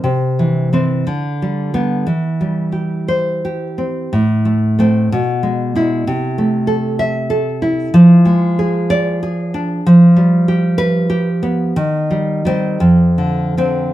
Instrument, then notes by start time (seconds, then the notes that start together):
nylon-string guitar
0.04 C3
0.39 E3
0.73 E3 C4
1.07 D3
1.42 G3
1.74 G3 B3
2.07 E3
2.41 G3
2.72 G4
3.08 C5
3.45 G4
3.78 C4
4.13 A2
4.45 A3
4.79 A3 C4
5.12 B2
5.43 G#3
5.75 G#3 E4
6.07 C3
6.38 A3
6.67 A4
6.99 E5
7.30 A4
7.62 E4
7.94 F3
8.25 G#3
8.59 G#4
8.90 D5
9.23 G#4
9.54 D4
9.86 F3
10.16 G3
10.48 G4
10.78 B4
11.10 G4
11.43 B3
11.76 D#3
12.11 G3
12.45 G3 C4
12.80 F2
13.18 D3
13.57 D3 C4